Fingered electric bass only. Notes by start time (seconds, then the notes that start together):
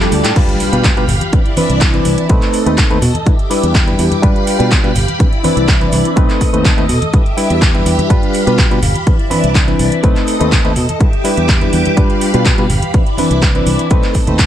0.11 D2
0.24 A2
0.36 G2
0.73 B2
0.97 B2
1.08 G1
1.69 C2
2.05 C2
2.30 B1
2.66 D#2
2.90 D#2
3.02 B2
3.63 E2
3.99 E2
4.23 G2
4.60 B2
4.84 B2
4.96 G1
5.56 C2
5.92 C2
6.17 B1
6.53 D#2
6.77 D#2
6.89 B2
7.50 E2
7.86 E2
8.10 G2
8.47 B2
8.71 B2
8.82 G1
9.43 C2
9.79 C2
10.04 B1
10.41 D#2
10.65 D#2
10.76 B2
11.37 E2
11.73 E2
11.97 G2
12.34 B2
12.58 B2
12.69 G1
13.30 C2
13.66 C2
13.91 B1
14.28 D#2